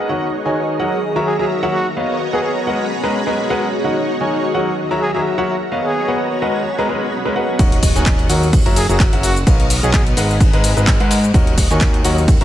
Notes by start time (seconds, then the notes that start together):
Already playing: D#5 F#5
0.09 D#3 D#4 F#4 A#4 C#5 D#5 F#5
0.46 D#3 F#4 A#4 C#5 D#5 G#5
0.80 F#3 F#4 A#4 C#5 D#5 F#5
1.03 F#4 E5 A#5
1.16 F#3 F#4 A#4 C#5 E5 A#5
1.26 G#4
1.39 F#3 F#4 G#4 A#4 C#5 E5 A#5
1.63 F#3 F#4 A#4 C#5 E5 F#5
1.73 F#4
1.96 B3 A#4 B4 C#5 D#5 F5 A#5
2.30 B3 G#4 A#4 B4 C#5 D#5 F#5
2.44 G#4
2.67 G#3 G#4 A#4 B4 D#5 F#5 B5
3.03 G#3 G#4 A#4 B4 D#5 A#5
3.27 G#3 G#4 A#4 B4 D#5 A#5
3.50 G#3 G#4 A#4 B4 D#5 F#5
3.84 D#3 D#4 F#4 A#4 C#5 D#5 F#5
4.21 D#3 F#4 A#4 C#5 D#5 G#5
4.55 F#3 F#4 A#4 C#5 D#5 F#5
4.78 F#4 E5 A#5
4.91 F#3 F#4 A#4 C#5 E5 A#5
5.01 G#4
5.14 F#3 F#4 G#4 A#4 C#5 E5 A#5
5.38 F#3 F#4 A#4 C#5 E5 F#5
5.72 B3 A#4 B4 C#5 D#5 F5
5.85 G#4
6.08 B3 A#4 B4 C#5 D#5 F#5
6.42 G#3 G#4 A#4 B4 D#5 F#5 B5
6.79 G#3 G#4 A#4 B4 D#5 A#5
6.89 G#3 G#4 A#4 B4 D#5 A#5
7.25 G#3 G#4 A#4 B4 D#5 A#5
7.36 G#4 A#4 B4 D#5 F#5
7.59 D#1 D#3 F#4 A#4 C#5 D#5 F#5 C#6 F#6, kick, closed hi-hat, ride, shaker
7.72 closed hi-hat, ride
7.83 kick, open hi-hat, ride, shaker
7.96 D#1 D#3 F#4 A#4 C#5 D#5 G#5, snare, closed hi-hat, shaker
8.06 kick, snare, clap, closed hi-hat, ride, shaker
8.19 closed hi-hat
8.29 D#2 F#3 F#4 A#4 C#5 D#5 F#5, open hi-hat, ride, shaker
8.43 shaker
8.53 F#5 E6 A#6, kick, closed hi-hat, open hi-hat, shaker
8.66 F#1 F#3 F#4 A#4 C#5 E5 A#5, closed hi-hat, ride
8.76 G#4, open hi-hat, ride, shaker
8.89 F#1 F#3 F#4 G#4 A#4 C#5 E5 A#5, closed hi-hat, ride, shaker
9.00 kick, snare, clap, closed hi-hat, ride, shaker
9.13 F#1 F#3 F#4 A#4 C#5 E5 F#5, closed hi-hat
9.23 F#4, open hi-hat, ride, shaker
9.36 closed hi-hat, shaker
9.47 B1 B3 A#4 B4 C#5 D#5 F5 A#5 C#6 D#6 F6, kick, closed hi-hat, ride, shaker
9.60 closed hi-hat
9.70 open hi-hat, ride, shaker
9.83 B1 B3 G#4 A#4 B4 C#5 D#5 F#5, closed hi-hat, shaker
9.93 G#4, kick, snare, clap, closed hi-hat, ride, shaker
10.07 closed hi-hat
10.17 G#1 G#3 G#4 A#4 B4 D#5 F#5 A#5 B5, open hi-hat, ride, shaker
10.30 shaker
10.40 kick, closed hi-hat, ride, shaker
10.53 G#1 G#3 G#4 A#4 B4 D#5 A#5, closed hi-hat
10.64 open hi-hat, ride, shaker
10.77 G#1 G#3 G#4 A#4 B4 D#5 A#5, closed hi-hat, shaker
10.87 kick, snare, clap, closed hi-hat, ride, shaker
11.00 G#2 G#3 G#4 A#4 B4 D#5 F#5, closed hi-hat, ride
11.11 snare, open hi-hat, ride, shaker
11.24 closed hi-hat, ride, shaker
11.34 D#1 D#3 F#4 A#4 C#5 D#5 F#5 C#6 F#6, kick, closed hi-hat, ride, shaker
11.47 closed hi-hat, ride
11.57 kick, open hi-hat, ride, shaker
11.70 D#2 D#3 F#4 A#4 C#5 D#5 G#5, snare, closed hi-hat, shaker
11.80 kick, snare, clap, closed hi-hat, ride, shaker
11.94 closed hi-hat
12.04 D#2 F#3 F#4 A#4 C#5 D#5 F#5, open hi-hat, ride, shaker
12.18 shaker
12.28 F#5 E6 A#6, kick, closed hi-hat, open hi-hat, shaker
12.41 F#1 F#3 F#4 A#4 C#5 E5 A#5, closed hi-hat, ride